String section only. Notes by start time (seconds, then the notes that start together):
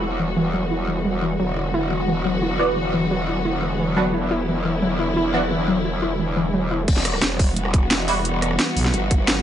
Already playing: E3 G3 B3 F#4
1.39 D3 F#3 B3 F#4
4.14 E4
6.88 E3 G3 B3 F#4